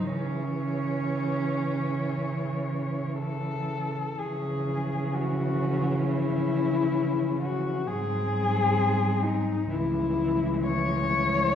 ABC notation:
X:1
M:4/4
L:1/8
Q:1/4=64
K:C#m
V:1 name="Cello"
c6 A2 | G2 F2 E3 F | G3 D E2 c2 |]
V:2 name="Cello"
C6 z2 | C8 | ^B,4 G,4 |]
V:3 name="Cello" clef=bass
E,8 | E,8 | F,4 E,4 |]
V:4 name="Cello" clef=bass
C,8 | C,8 | G,,4 C,,4 |]